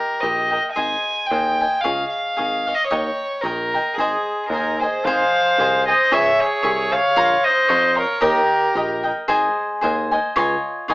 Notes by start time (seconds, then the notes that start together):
Already playing: G4 A#4 D#5 G5
0.20 A#1 G4 A#4 D#5 G5
0.50 A#4 D#5 G5
0.72 G#4 D#5 G#5
0.76 G#1 C5 G#5
1.26 G5
1.30 D#2 G#4 C5 D#5 G#5
1.61 C5 D#5 G#5
1.81 G#4 C#5 D#5 F5
1.85 C#2 F5
2.10 F5
2.37 G#1 G#4 C#5 D#5 F5
2.67 C#5 D#5 F5
2.75 D#5
2.87 C#5 D#5 G5
2.92 D#2 A#5
3.41 A#1 A#4 C#5 D#5 G5
3.45 A#5
3.74 D#5 G5 A#5
3.94 G#1 G#4
3.98 G#4 C5 D#5 G#5
4.49 D#2 D#4 G#4 A#4
4.54 C5 D#5 G#5
4.78 G#4 C5 G#5
4.83 C5 D#5
5.05 G#1 G#4 C5 D#5 F5 G#5
5.58 C2 G#4 C5 D#5 G#5
5.87 C5 D#5 G#5
6.12 C#2 G#4 C#5 E5 G#5
6.40 G#4 C#5
6.63 C2 G#4 C#5 E5 G#5
6.92 C#5 F5
7.16 A#1 C#5 F5 A#5 C6
7.44 C5 D#5
7.68 F2 C#5 F5 A#5 C6
7.96 A#4 C#5 F5 A#5 C6
8.21 D#2 G4 A#4 D#5 G5
8.75 A#1 G4 A#4 D#5 G5
9.03 A#4 D#5 G5
9.28 G#1 G#4 C5 D#5 G#5
9.81 D#2 G#4 C5 D#5 G#5
10.11 C5 D#5 G#5
10.36 C#2 F4 C#5 D#5 G#5
10.88 G#1 F4 C#5 D#5 G#5